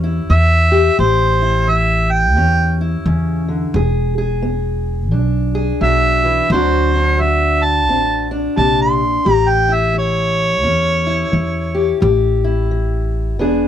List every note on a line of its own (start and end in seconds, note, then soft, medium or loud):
0.00 0.19 E2 medium
0.00 0.24 A2 medium
0.00 0.96 C#4 medium
0.00 1.42 E4 medium
0.00 0.70 G4 medium
0.29 0.88 E2 medium
0.29 0.93 E3 medium
0.29 0.97 E5 loud
0.72 0.95 G4 medium
0.99 2.36 A1 medium
0.99 1.63 A2 medium
0.99 3.72 G4 medium
0.99 1.71 C5 medium
1.42 2.80 E4 medium
1.68 2.32 E3 medium
1.68 2.13 E5 medium
2.12 2.78 G5 medium
2.36 2.95 E2 medium
2.36 3.00 A2 medium
2.36 3.72 C#4 medium
2.81 3.72 E4 medium
3.06 3.64 E2 medium
3.06 3.48 C#3 medium
3.48 3.75 D3 medium
3.74 5.13 E1 medium
3.74 4.39 E3 medium
3.74 4.17 G#4 medium
4.18 5.54 G#4 medium
4.42 5.07 B3 medium
5.11 5.71 B1 medium
5.11 5.76 B2 medium
5.11 6.47 D4 soft
5.55 6.47 G#4 medium
5.81 6.40 B1 medium
5.81 6.24 F#3 medium
5.81 6.49 E5 loud
6.25 6.51 E3 medium
6.50 7.88 D2 loud
6.50 7.15 D3 medium
6.50 7.19 F#3 medium
6.50 7.88 C4 medium
6.50 6.94 D4 medium
6.50 7.23 C5 medium
6.55 9.26 F#4 medium
6.96 8.30 D4 medium
7.20 7.84 F#3 medium
7.20 7.65 E5 medium
7.64 8.30 A5 medium
7.88 8.47 A1 medium
7.88 8.52 A2 medium
7.88 9.23 C4 medium
8.31 9.23 D4 medium
8.57 9.16 A#1 medium
8.57 9.00 C3 medium
8.57 8.80 A5 loud
8.82 9.33 C6 medium
9.25 10.65 A1 medium
9.25 9.89 A2 medium
9.25 11.73 G4 medium
9.33 9.51 A#5 medium
9.50 9.76 G5 medium
9.69 11.06 E4 medium
9.74 9.96 E5 medium
9.94 10.58 E3 medium
9.98 12.00 C#5 loud
10.63 11.23 E2 medium
10.63 11.27 A2 medium
10.63 11.98 C#4 medium
11.07 12.44 E4 medium
11.32 11.91 E2 medium
11.32 11.96 E3 medium
11.75 11.98 G4 medium
12.00 13.40 A1 loud
12.00 12.65 A2 medium
12.00 13.37 G4 medium
12.44 13.37 E4 medium
12.71 13.35 E3 medium
13.39 13.68 E1 medium
13.39 13.68 E3 medium
13.39 13.68 B3 medium
13.39 13.68 D4 medium
13.39 13.68 G#4 medium